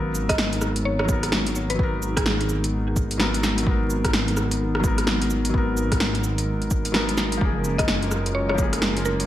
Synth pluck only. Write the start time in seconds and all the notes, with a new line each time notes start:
0.29 D#5
0.85 C#5
0.99 C#5
1.70 B4
2.17 G#4
7.78 D#5
8.35 C#5
8.49 C#5
9.05 A#4